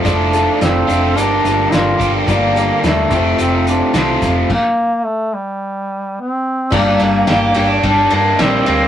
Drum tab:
CC |--------|--------|x-------|x-------|
RD |--------|--------|--------|-xxxxxxx|
HH |xxxxxxxx|xxxxxxxx|--------|--------|
SD |--o---o-|--o---o-|--------|--o---o-|
BD |o------o|o--o---o|o-------|o---o---|